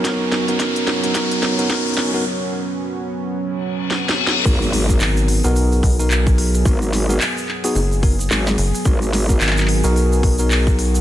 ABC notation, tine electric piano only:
X:1
M:4/4
L:1/16
Q:"Swing 16ths" 1/4=109
K:G#m
V:1 name="Tine electric piano"
[B,DFA]3 [B,DFA] [B,DFA]3 [B,DFA] [B,DFA]3 [B,DFA] [B,DFA]3 [B,DFA] | z16 | [B,DFA]3 [B,DFA]4 [B,DFA]4 [B,DFA]4- [B,DFA] | [B,DFA]3 [B,DFA] z3 [B,DFG] z2 [B,DFA] z4 z |
[B,DFA]3 [B,DFA]4 [B,DFA]4 [B,DFA]4- [B,DFA] |]